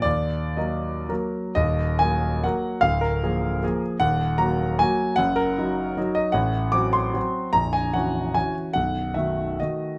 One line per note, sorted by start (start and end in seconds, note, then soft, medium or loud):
0.02 0.55 D#2 medium
0.02 0.56 D5 loud
0.57 1.05 F#3 soft
0.57 1.06 A#3 soft
0.57 1.06 A#4 soft
0.57 1.09 D#5 medium
1.09 1.53 F#3 soft
1.09 1.53 A#3 soft
1.09 1.53 A#4 medium
1.55 1.99 D#1 medium
1.55 1.98 D#2 medium
1.55 1.99 D#5 loud
1.99 2.40 F#3 soft
1.99 2.40 A#3 soft
1.99 2.40 A#4 soft
1.99 2.43 G#5 medium
2.44 2.79 F#3 soft
2.44 2.80 A#3 soft
2.44 2.80 A#4 soft
2.44 2.83 F#5 medium
2.81 3.20 D1 medium
2.81 3.21 D2 medium
2.81 3.01 F5 loud
3.01 3.81 A#4 medium
3.23 3.59 F3 soft
3.23 3.59 A#3 soft
3.23 3.59 G#4 soft
3.63 3.96 F3 soft
3.63 3.97 A#3 soft
3.63 3.97 G#4 medium
4.00 4.38 D#1 medium
4.00 4.38 D#2 medium
4.00 4.39 F#5 loud
4.38 4.76 F#3 soft
4.38 4.76 A#3 soft
4.38 4.76 F#4 soft
4.38 4.79 A#5 medium
4.79 5.14 F#3 medium
4.79 5.15 A#3 soft
4.79 5.15 F#4 medium
4.79 5.18 G#5 medium
5.16 5.55 F#1 medium
5.16 5.56 F#2 medium
5.16 5.36 F#5 loud
5.36 6.16 A#4 medium
5.58 5.94 F#3 soft
5.58 5.94 D#4 soft
5.58 5.95 F#4 soft
5.97 6.31 F#3 soft
5.97 6.31 D#4 medium
5.97 6.32 F#4 medium
6.15 6.34 D#5 medium
6.32 6.73 A1 medium
6.32 6.73 A2 medium
6.32 6.74 F#5 medium
6.72 7.11 F#3 soft
6.72 7.11 C4 soft
6.72 7.12 F#4 soft
6.72 6.94 D6 loud
6.93 7.52 C6 medium
7.14 7.49 F#3 soft
7.14 7.49 C4 soft
7.14 7.50 F#4 medium
7.53 7.92 A#0 medium
7.53 7.92 A#1 medium
7.53 7.73 A#5 loud
7.73 7.94 G#5 medium
7.93 8.31 E3 soft
7.93 8.31 C#4 soft
7.93 8.32 F#4 soft
7.93 8.35 F#5 medium
8.34 8.70 E3 soft
8.34 8.70 C#4 soft
8.34 8.71 F#4 soft
8.34 8.54 G#5 medium
8.73 9.15 B0 medium
8.73 9.15 B1 medium
8.73 9.15 F#5 medium
9.14 9.54 D#3 soft
9.14 9.55 A3 soft
9.14 9.55 F#4 soft
9.14 9.58 E5 medium
9.60 9.98 D#3 soft
9.60 9.98 A3 soft
9.60 9.98 F#4 soft
9.60 9.98 D#5 medium